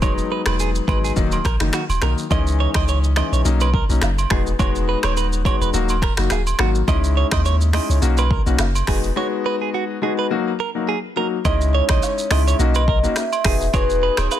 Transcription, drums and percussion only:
0.02 kick, high agogo, shaker
0.18 shaker
0.46 finger snap, cross-stick, high agogo, shaker
0.59 shaker
0.75 shaker
0.88 kick, high agogo
1.04 shaker
1.16 kick, shaker
1.31 high agogo, shaker
1.45 finger snap, kick, cross-stick, shaker
1.60 finger snap, cross-stick, shaker
1.73 finger snap, cross-stick, shaker
1.90 high agogo, shaker
2.02 finger snap, cross-stick, shaker
2.18 shaker
2.31 kick, high agogo, shaker
2.47 shaker
2.74 finger snap, kick, cross-stick, high agogo, shaker
2.88 shaker
3.04 shaker
3.16 finger snap, cross-stick, high agogo, shaker
3.33 shaker
3.45 shaker
3.60 high agogo, shaker
3.74 kick
3.90 shaker
4.02 finger snap, cross-stick, low woodblock, shaker
4.18 high agogo, shaker
4.30 finger snap, kick, cross-stick
4.47 shaker
4.59 kick, high agogo, shaker
4.75 shaker
5.03 finger snap, cross-stick, high agogo, shaker
5.17 shaker
5.33 shaker
5.45 kick, high agogo, shaker
5.62 shaker
5.74 shaker
5.89 high agogo, shaker
6.02 finger snap, kick, cross-stick
6.17 finger snap, cross-stick, shaker
6.30 finger snap, cross-stick, low woodblock, shaker
6.47 high agogo, shaker
6.59 finger snap, cross-stick
6.75 shaker
6.88 kick, high agogo, shaker
7.04 shaker
7.31 finger snap, kick, cross-stick, high agogo, shaker
7.45 shaker
7.61 shaker
7.73 finger snap, cross-stick, open hi-hat, high agogo, shaker
7.90 shaker
8.02 shaker
8.17 high agogo, shaker
8.31 kick
8.47 shaker
8.59 finger snap, cross-stick, low woodblock, shaker
8.75 high agogo, shaker
8.87 finger snap, kick, cross-stick, open hi-hat
9.04 shaker
11.45 kick, high agogo, shaker
11.61 shaker
11.89 finger snap, kick, cross-stick, high agogo, shaker
12.03 low woodblock, shaker
12.18 shaker
12.31 finger snap, cross-stick, open hi-hat, high agogo, shaker
12.48 shaker
12.60 shaker
12.74 high agogo, shaker
12.88 kick
13.04 shaker
13.16 finger snap, cross-stick, shaker
13.33 high agogo, shaker
13.45 finger snap, kick, cross-stick, open hi-hat
13.61 shaker
13.74 kick, high agogo, shaker
13.90 shaker
14.17 finger snap, cross-stick, high agogo, shaker
14.31 low woodblock, shaker

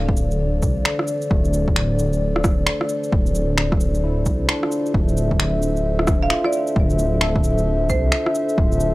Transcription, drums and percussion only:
0.09 kick
0.17 shaker
0.31 shaker
0.62 kick, shaker
0.85 finger snap
0.99 cross-stick
1.08 shaker
1.22 shaker
1.31 kick
1.45 shaker
1.53 shaker
1.68 kick
1.76 finger snap
1.99 shaker
2.13 shaker
2.36 cross-stick
2.44 kick, cross-stick, shaker
2.67 finger snap
2.81 cross-stick
2.89 shaker
3.04 shaker
3.12 kick
3.26 shaker
3.35 shaker
3.58 finger snap
3.72 kick, cross-stick
3.80 shaker
3.95 shaker
4.26 kick, shaker
4.49 finger snap
4.63 cross-stick
4.72 shaker
4.86 shaker
4.94 kick
5.09 shaker
5.17 shaker
5.31 kick
5.40 finger snap
5.62 shaker
5.77 shaker
5.99 cross-stick
6.07 kick, cross-stick, shaker
6.30 finger snap
6.44 cross-stick
6.53 shaker
6.67 shaker
6.76 kick
6.90 shaker
6.99 shaker
7.21 finger snap
7.36 kick
7.44 shaker
7.58 shaker
7.89 kick, shaker
8.12 finger snap
8.26 cross-stick
8.35 shaker
8.49 shaker
8.58 kick
8.72 shaker
8.80 shaker

